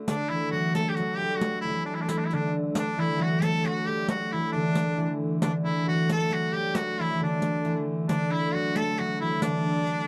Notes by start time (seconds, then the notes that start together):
Already playing: D4 E4 F#4 A4
0.07 D3 A3 D4, riq
0.29 E3 E4
0.51 F#3 F#4
0.75 A3 A4, riq
0.89 G4
0.95 F#4, riq
0.99 F#3
1.17 G4
1.21 G3
1.37 F#4
1.41 F#3, riq
1.61 E3 E4
1.69 E3
1.74 E3
1.86 D4
1.95 E4
2.01 D4
2.09 E4, riq
2.18 D4
2.27 E4, riq
2.32 D3 D4
2.75 D3 D4, riq
2.98 E3 E4
3.18 F#3 F#4
3.40 A3 A4, riq
3.64 F#3 F#4, riq
3.87 G3 G4
4.08 F#3 F#4, riq
4.32 E3 E4
4.52 D3 D4
4.75 riq
4.97 E3
5.40 D3 A3 D4, riq
5.64 E3 E4
5.87 F#3 F#4
6.09 A3 A4, riq
6.30 F#3 F#4, riq
6.52 G3 G4
6.74 F#3 F#4, riq
6.99 E3 E4
7.14 E3
7.20 D3 D4
7.42 riq
7.65 E3, riq
8.08 D3 D4, riq
8.32 E4
8.53 F#3 F#4
8.76 A3 A4, riq
8.97 F#3 F#4, riq
9.21 E3 E4
9.42 D4, riq
9.46 D3
9.87 riq